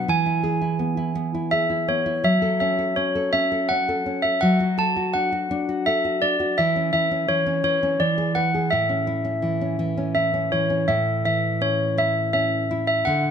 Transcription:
0.08 2.20 E3 medium
0.08 1.56 G#5 medium
0.26 0.60 E4 soft
0.43 1.51 G#4 soft
0.62 0.96 E4 soft
0.79 1.14 B3 soft
0.97 1.33 E4 soft
1.15 1.87 B3 medium
1.34 1.69 E4 soft
1.51 2.22 G#4 soft
1.51 1.89 E5 medium
1.70 2.05 E4 soft
1.88 2.23 B3 soft
1.88 2.26 C#5 medium
2.06 2.24 E4 soft
2.24 4.38 F#3 medium
2.24 2.41 E5 medium
2.42 2.77 A4 soft
2.60 2.96 C#4 medium
2.60 2.77 E5 medium
2.79 3.14 A4 soft
2.96 3.32 C#4 soft
2.96 3.30 C#5 medium
3.15 3.50 A4 soft
3.33 3.69 C#4 medium
3.33 3.70 E5 medium
3.52 3.87 A4 soft
3.69 4.05 C#4 soft
3.69 4.25 F#5 medium
3.89 4.23 A4 soft
4.06 4.41 C#4 soft
4.22 4.42 A4 soft
4.22 4.40 E5 medium
4.41 6.53 F#3 medium
4.41 4.75 F#5 medium
4.60 4.95 F#4 soft
4.78 5.86 A4 medium
4.78 5.15 A5 medium
4.96 5.31 F#4 soft
5.13 5.50 D4 soft
5.13 5.87 F#5 medium
5.32 5.68 F#4 soft
5.51 6.21 D4 medium
5.69 6.04 F#4 medium
5.86 6.56 A4 soft
5.86 6.23 E5 medium
6.05 6.39 F#4 soft
6.22 6.56 D4 soft
6.22 6.58 D5 medium
6.40 6.57 F#4 soft
6.58 6.92 E3 medium
6.58 6.90 E5 medium
6.76 7.10 C#4 soft
6.93 7.28 E3 medium
6.93 7.26 E5 medium
7.11 7.45 C#4 soft
7.29 7.63 E3 soft
7.29 7.61 C#5 medium
7.46 7.82 C#4 soft
7.64 7.98 E3 medium
7.64 8.00 C#5 medium
7.83 7.99 C#4 soft
8.00 8.68 E3 medium
8.00 8.36 D5 medium
8.18 8.35 G#4 soft
8.35 8.54 B4 soft
8.35 8.68 F#5 medium
8.55 8.71 G#4 soft
8.70 10.86 A2 medium
8.70 10.13 E5 medium
8.89 9.23 C#4 soft
9.07 10.14 E4 soft
9.25 9.60 C#4 soft
9.42 9.78 E3 soft
9.61 9.96 C#4 soft
9.79 10.51 E3 medium
9.97 10.32 C#4 soft
10.15 10.87 E4 soft
10.15 10.49 E5 medium
10.34 10.69 C#4 soft
10.52 10.88 E3 soft
10.52 10.90 C#5 medium
10.70 10.88 C#4 soft
10.88 13.02 A2 medium
10.88 11.24 E5 medium
11.25 12.66 E3 soft
11.25 11.63 E5 medium
11.61 12.32 C#4 soft
11.61 11.99 C#5 medium
11.98 12.70 E4 soft
11.98 12.32 E5 medium
12.33 13.04 C#4 soft
12.33 12.84 E5 medium
12.71 13.05 E4 soft
12.87 13.04 E5 medium
13.05 13.31 D3 medium
13.05 13.31 F#5 medium

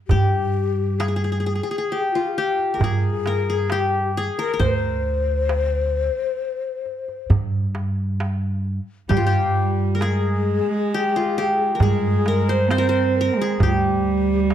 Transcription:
0.08 1.59 G2 medium
0.08 1.00 G4 medium
0.08 1.06 G4 medium
0.08 darbuka dum medium
0.99 2.14 G#4 medium
0.99 1.08 G#4 medium
0.99 darbuka tek medium
1.08 1.16 G#4 soft
1.16 1.24 G#4 medium
1.24 1.32 G#4 soft
1.32 1.40 G#4 soft
1.40 1.46 G#4 soft
1.46 1.55 G#4 medium
1.55 1.63 G#4 soft
1.63 1.71 G#4 medium
1.71 1.78 G#4 medium
1.78 1.98 G#4 medium
1.92 2.37 G4 medium
2.12 2.29 F4 medium
2.12 3.50 F4 medium
2.28 2.36 G#4 soft
2.34 2.80 G4 medium
2.34 2.90 G4 medium
2.59 darbuka ka soft
2.74 3.27 A#4 medium
2.78 4.28 G2 medium
2.78 3.72 G#4 medium
2.78 darbuka dum medium
2.84 3.49 G#4 medium
3.26 4.38 A#4 medium
3.26 darbuka tek medium
3.50 3.78 G#4 medium
3.70 4.11 G4 medium
3.70 4.23 G4 medium
3.70 darbuka tek medium
4.14 5.39 G#4 medium
4.14 darbuka ka soft
4.38 4.62 A#4 medium
4.38 4.53 A#4 medium
4.54 5.67 A#4 medium
4.59 6.08 D2 medium
4.59 7.26 C5 medium
4.59 7.31 C5 medium
4.59 darbuka dum medium
5.49 darbuka tek medium
6.86 darbuka ka soft
7.08 darbuka ka soft
7.30 8.78 G2 medium
7.30 darbuka dum medium
7.75 darbuka tek medium
8.20 darbuka tek medium
8.65 darbuka ka soft
9.08 10.58 G2 medium
9.08 9.21 G3 medium
9.08 9.26 G4 medium
9.08 9.23 G4 medium
9.08 darbuka dum medium
9.17 10.51 F4 medium
9.22 10.00 G3 medium
9.22 10.01 G4 medium
9.27 10.08 G4 medium
9.95 11.79 G#3 medium
9.95 11.08 A#4 medium
9.99 11.73 G#4 medium
9.99 11.00 G#4 medium
9.99 darbuka tek medium
10.94 11.38 G4 medium
11.16 12.51 F4 medium
11.35 11.89 G4 medium
11.35 darbuka ka soft
11.58 darbuka ka soft
11.75 11.82 A#4 medium
11.75 12.27 A#4 medium
11.79 13.28 G2 medium
11.79 12.71 G#3 loud
11.79 12.29 G#4 medium
11.79 13.04 G#4 medium
11.79 darbuka dum loud
12.26 12.78 A#4 medium
12.26 12.50 A#4 medium
12.26 darbuka tek medium
12.49 12.69 C5 medium
12.49 12.71 C5 medium
12.69 13.37 C4 medium
12.69 12.82 C5 medium
12.69 12.88 C5 medium
12.69 darbuka tek medium
12.78 13.20 A#4 medium
12.83 13.17 C5 medium
12.89 13.94 C5 medium
13.15 13.39 A#4 medium
13.15 darbuka ka soft
13.21 14.34 A#4 loud
13.36 13.60 G#3 medium
13.36 13.61 G#4 medium
13.41 13.69 G#4 medium
13.59 14.54 D2 medium
13.59 14.54 G3 medium
13.59 13.67 G4 medium
13.59 darbuka dum medium
13.63 13.76 F4 medium
13.63 14.54 G4 medium
13.74 14.54 G4 medium
14.05 darbuka ka soft
14.50 darbuka tek medium

